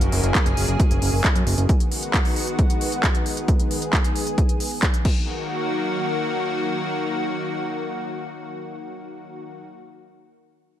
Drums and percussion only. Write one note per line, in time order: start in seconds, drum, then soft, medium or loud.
0.01 closed hi-hat medium
0.12 open hi-hat loud
0.24 closed hi-hat medium
0.35 kick loud
0.35 clap loud
0.35 closed hi-hat medium
0.46 closed hi-hat medium
0.57 open hi-hat loud
0.68 closed hi-hat medium
0.80 kick loud
0.80 closed hi-hat medium
0.91 closed hi-hat medium
1.02 open hi-hat loud
1.13 open hi-hat medium
1.24 kick loud
1.24 clap loud
1.24 closed hi-hat medium
1.36 closed hi-hat medium
1.47 open hi-hat loud
1.58 closed hi-hat medium
1.69 kick loud
1.69 closed hi-hat medium
1.80 closed hi-hat medium
1.92 open hi-hat loud
2.03 closed hi-hat medium
2.14 kick loud
2.14 clap loud
2.14 closed hi-hat medium
2.25 open hi-hat medium
2.36 open hi-hat loud
2.47 closed hi-hat medium
2.59 kick loud
2.59 closed hi-hat medium
2.70 closed hi-hat medium
2.81 open hi-hat loud
2.92 closed hi-hat medium
3.04 kick loud
3.04 clap loud
3.04 closed hi-hat medium
3.15 closed hi-hat medium
3.26 open hi-hat loud
3.37 closed hi-hat medium
3.48 kick loud
3.48 closed hi-hat medium
3.60 closed hi-hat medium
3.71 open hi-hat loud
3.82 closed hi-hat medium
3.93 kick loud
3.93 clap loud
3.93 closed hi-hat medium
4.04 closed hi-hat medium
4.16 open hi-hat loud
4.27 closed hi-hat medium
4.38 kick loud
4.38 closed hi-hat medium
4.49 closed hi-hat medium
4.60 open hi-hat loud
4.71 open hi-hat medium
4.83 kick loud
4.83 clap loud
4.83 closed hi-hat medium
4.94 closed hi-hat medium
5.05 kick loud
5.05 crash medium